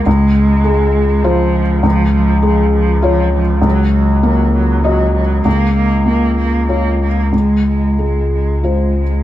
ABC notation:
X:1
M:3/4
L:1/8
Q:1/4=99
K:Fphr
V:1 name="Felt piano"
D,,2 A,2 [Fc]2 | D,,2 A,2 [Fd]2 | D,,2 B,2 [Ge]2 | D,,2 B,2 [Fd]2 |
D,,2 A,2 [Fc]2 |]
V:2 name="Cello" clef=bass
A,4 F,2 | F, F, F, F, F, F, | G, G, G, G, G, G, | B, B, B, B, B, B, |
A, A, A, A, A, A, |]
V:3 name="Sub bass" clef=bass
D,,6- | D,,6- | D,,6 | D,,6- |
D,,6 |]